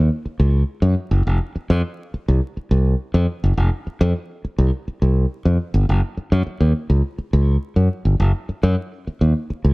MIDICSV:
0, 0, Header, 1, 3, 480
1, 0, Start_track
1, 0, Tempo, 578035
1, 1045, Time_signature, 4, 2, 24, 8
1, 8086, End_track
2, 0, Start_track
2, 0, Title_t, "Fingered electric bass"
2, 0, Program_c, 0, 33
2, 328, Note_on_c, 0, 37, 86
2, 518, Note_off_c, 0, 37, 0
2, 681, Note_on_c, 0, 42, 97
2, 778, Note_off_c, 0, 42, 0
2, 923, Note_on_c, 0, 30, 87
2, 1019, Note_off_c, 0, 30, 0
2, 1052, Note_on_c, 0, 29, 89
2, 1145, Note_off_c, 0, 29, 0
2, 1411, Note_on_c, 0, 41, 98
2, 1504, Note_off_c, 0, 41, 0
2, 1896, Note_on_c, 0, 36, 90
2, 1987, Note_off_c, 0, 36, 0
2, 2250, Note_on_c, 0, 36, 86
2, 2439, Note_off_c, 0, 36, 0
2, 2609, Note_on_c, 0, 41, 94
2, 2703, Note_off_c, 0, 41, 0
2, 2853, Note_on_c, 0, 30, 85
2, 2945, Note_off_c, 0, 30, 0
2, 2968, Note_on_c, 0, 29, 92
2, 3062, Note_off_c, 0, 29, 0
2, 3328, Note_on_c, 0, 41, 114
2, 3422, Note_off_c, 0, 41, 0
2, 3807, Note_on_c, 0, 36, 92
2, 3901, Note_off_c, 0, 36, 0
2, 4168, Note_on_c, 0, 36, 81
2, 4357, Note_off_c, 0, 36, 0
2, 4529, Note_on_c, 0, 41, 89
2, 4623, Note_off_c, 0, 41, 0
2, 4766, Note_on_c, 0, 31, 94
2, 4861, Note_off_c, 0, 31, 0
2, 4891, Note_on_c, 0, 30, 96
2, 4984, Note_off_c, 0, 30, 0
2, 5248, Note_on_c, 0, 42, 102
2, 5342, Note_off_c, 0, 42, 0
2, 5485, Note_on_c, 0, 39, 89
2, 5580, Note_off_c, 0, 39, 0
2, 5727, Note_on_c, 0, 37, 87
2, 5821, Note_off_c, 0, 37, 0
2, 6088, Note_on_c, 0, 37, 90
2, 6277, Note_off_c, 0, 37, 0
2, 6445, Note_on_c, 0, 42, 84
2, 6540, Note_off_c, 0, 42, 0
2, 6686, Note_on_c, 0, 31, 81
2, 6780, Note_off_c, 0, 31, 0
2, 6807, Note_on_c, 0, 30, 96
2, 6901, Note_off_c, 0, 30, 0
2, 7169, Note_on_c, 0, 42, 100
2, 7262, Note_off_c, 0, 42, 0
2, 7649, Note_on_c, 0, 39, 79
2, 7742, Note_off_c, 0, 39, 0
2, 8009, Note_on_c, 0, 37, 82
2, 8086, Note_off_c, 0, 37, 0
2, 8086, End_track
3, 0, Start_track
3, 0, Title_t, "Muted fingered electric bass strokes"
3, 212, Note_on_c, 9, 29, 44
3, 295, Note_off_c, 9, 29, 0
3, 1292, Note_on_c, 9, 29, 47
3, 1375, Note_off_c, 9, 29, 0
3, 1776, Note_on_c, 9, 29, 48
3, 1859, Note_off_c, 9, 29, 0
3, 2133, Note_on_c, 9, 29, 42
3, 2217, Note_off_c, 9, 29, 0
3, 3211, Note_on_c, 9, 29, 43
3, 3294, Note_off_c, 9, 29, 0
3, 3692, Note_on_c, 9, 29, 49
3, 3775, Note_off_c, 9, 29, 0
3, 4050, Note_on_c, 9, 29, 48
3, 4133, Note_off_c, 9, 29, 0
3, 5127, Note_on_c, 9, 29, 46
3, 5210, Note_off_c, 9, 29, 0
3, 5369, Note_on_c, 9, 29, 48
3, 5452, Note_off_c, 9, 29, 0
3, 5966, Note_on_c, 9, 29, 43
3, 6049, Note_off_c, 9, 29, 0
3, 7049, Note_on_c, 9, 29, 46
3, 7132, Note_off_c, 9, 29, 0
3, 7535, Note_on_c, 9, 29, 44
3, 7618, Note_off_c, 9, 29, 0
3, 7890, Note_on_c, 9, 29, 50
3, 7973, Note_off_c, 9, 29, 0
3, 8086, End_track
0, 0, End_of_file